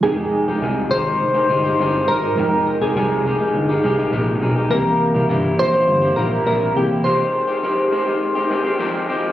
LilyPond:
<<
  \new Staff \with { instrumentName = "Synth keys" } { \time 4/4 \key f \minor \tempo 4 = 103 aes'4. c''2 bes'8~ | bes'8. aes'16 aes'2 r4 | bes'4 r8 c''4 bes'8 bes'8 g'8 | c''2. r4 | }
  \new Staff \with { instrumentName = "Reed electric piano" } { \time 4/4 \key f \minor <f aes ees' g''>1 | <f aes ees' g''>1 | <e bes c' g'>2.~ <e bes c' g'>8 <e bes c' g'>8 | r1 | }
  \new Staff \with { instrumentName = "Clean electric guitar" } { \time 4/4 \key f \minor <f, c ees aes ees' g'>16 <ees aes ees' g'>8 <ees aes ees' g'>16 <f, c ees aes ees' g'>8 <ees aes ees' g'>16 <ees aes ees' g'>8 <ees aes ees' g'>16 <ees aes ees' g'>16 <ees aes ees' g'>16 <f, c ees aes ees' g'>8 <ees aes ees' g'>16 <ees aes ees' g'>16 | <f, c ees aes ees' g'>16 <ees aes ees' g'>8 <ees aes ees' g'>16 <f, c ees aes ees' g'>8 <ees aes ees' g'>16 <ees aes ees' g'>8 <ees aes ees' g'>16 <ees aes ees' g'>16 <ees aes ees' g'>16 <f, c ees aes ees' g'>8 <ees aes ees' g'>16 <ees aes ees' g'>16 | <c g bes e' g'>16 <bes e' g'>8 <bes e' g'>16 <c g bes e' g'>8 <g bes e' g'>16 <bes e' g'>8 <bes e' g'>16 <g bes e' g'>16 <bes e' g'>16 <c g bes e' g'>8 <g bes e' g'>16 <bes e' g'>16 | <f, c ees aes c' g'>16 <ees aes c' g'>8 <ees aes c' g'>16 <f, c ees aes c' g'>8 <ees aes c' g'>16 <ees aes c' g'>8 <ees aes c' g'>16 <ees aes c' g'>16 <ees aes c' g'>16 <f, c ees aes c' g'>8 <ees aes c' g'>8 | }
  \new Staff \with { instrumentName = "Analog synth bass" } { \clef bass \time 4/4 \key f \minor f,,8 r16 f,,16 c,8 aes,,8 f,,8 g,,8 g,,8 aes,,8 | f,,8 r16 f,,16 c,8 f,,8 g,,8 c,8 bes,,8 b,,8 | c,8 r16 c,16 g,,8 bes,,8 g,,8 bes,,8 bes,,8 c,8 | r1 | }
>>